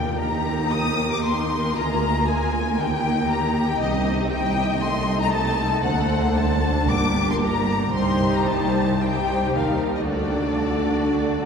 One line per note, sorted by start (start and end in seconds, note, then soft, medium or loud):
0.00 1.72 D#2 medium
0.00 3.76 A#3 soft
0.00 1.71 D#4 soft
0.00 1.72 G4 soft
0.00 3.76 A#4 soft
0.00 0.21 G5 medium
0.20 0.71 A#5 medium
0.72 1.12 D#6 medium
1.12 1.25 D6 medium
1.25 1.75 C6 medium
1.75 2.76 D2 soft
1.75 2.76 D2 medium
1.75 2.74 F4 soft
1.75 2.74 G#4 soft
1.75 2.27 A#5 medium
2.27 2.78 G#5 medium
2.78 3.80 D#2 medium
2.78 5.80 D#4 medium
2.78 4.79 G4 medium
2.78 3.30 G5 medium
3.31 3.68 A#5 medium
3.68 3.81 G5 medium
3.80 5.81 C2 medium
3.80 4.79 C4 medium
3.80 4.30 D#5 medium
3.80 5.81 D#5 medium
4.31 4.82 G5 medium
4.82 6.85 A3 medium
4.82 6.86 A4 medium
4.82 5.21 C6 medium
5.20 5.33 A#5 medium
5.34 5.84 A5 medium
5.84 6.87 D2 medium
5.84 7.91 D4 medium
5.84 6.86 C5 medium
5.84 6.35 F#5 medium
6.37 6.89 A5 medium
6.89 7.94 G1 medium
6.89 7.94 G2 medium
6.89 7.91 A#3 soft
6.89 7.90 G4 medium
6.89 7.90 A#4 medium
6.89 7.29 D6 medium
7.30 7.35 C6 medium
7.44 7.94 A#5 medium
7.94 9.49 C2 medium
7.94 8.96 G3 medium
7.94 8.96 D#4 medium
7.94 8.97 G4 soft
7.94 8.96 C5 medium
7.94 8.33 C6 medium
8.35 8.48 A#5 medium
8.46 8.99 A5 medium
9.01 10.06 G3 soft
9.01 10.06 D#4 soft
9.01 10.06 G4 soft
9.01 9.53 C5 soft
9.01 9.53 G5 medium
9.53 10.07 D#2 soft
9.53 10.08 A#4 soft
9.53 9.93 F5 soft
9.95 10.00 D#5 medium
10.07 11.45 D2 soft
10.07 11.45 D3 soft
10.07 11.45 D4 soft
10.07 11.45 F#4 soft
10.07 11.45 A4 soft
10.07 11.45 D5 medium